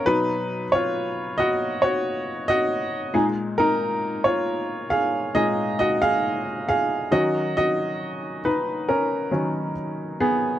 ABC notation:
X:1
M:4/4
L:1/16
Q:1/4=68
K:A#phr
V:1 name="Upright piano"
B3 [Ec]3 [Fd]2 [Fc]3 [Fd]3 G2 | [DA]3 [Ec]3 [Ge]2 [Gd]2 [Fd] [Ge]3 [Ge]2 | [Fd]2 [Fd]4 [DB]2 [CA]4 z2 [B,G]2 |]
V:2 name="Upright piano" clef=bass
[B,,F,D]2 z12 [A,,G,D]2- | [A,,G,D]4 z4 [A,,G,D]2 z6 | [D,F,C]6 z4 [D,F,C]2 z4 |]